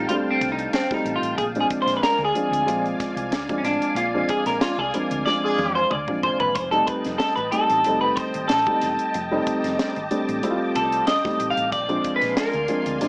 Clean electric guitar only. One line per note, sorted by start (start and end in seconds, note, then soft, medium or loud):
0.09 0.15 F4 medium
0.31 0.52 C4 medium
0.52 0.73 D#4 medium
0.73 0.94 C4 medium
0.94 1.17 D#4 medium
1.16 1.37 F4 medium
1.38 1.44 G#4 loud
1.60 1.66 G#4 medium
1.82 1.96 C5 medium
1.97 2.03 B4 medium
2.03 2.24 A#4 loud
2.25 2.86 G#4 medium
3.58 3.64 C#4 medium
3.65 3.96 D4 medium
3.97 4.31 F4 medium
4.30 4.46 G#4 loud
4.47 4.61 A#4 medium
4.61 4.79 F4 medium
4.79 4.94 G#4 loud
4.94 5.25 A#4 medium
5.26 5.72 D5 loud
5.75 5.91 C5 loud
5.91 6.23 D5 loud
6.23 6.39 C5 loud
6.40 6.55 B4 loud
6.55 6.71 C5 medium
6.71 6.87 A4 loud
6.87 7.18 B4 loud
7.18 7.35 A4 loud
7.36 7.51 B4 loud
7.52 8.00 A4 medium
8.01 8.16 B4 medium
8.16 8.47 C5 medium
8.48 10.06 A4 medium
10.76 11.07 A4 medium
11.07 11.50 D#5 loud
11.50 11.72 F5 loud
11.72 12.17 D5 loud
12.16 12.37 B4 medium
12.37 12.97 A#4 medium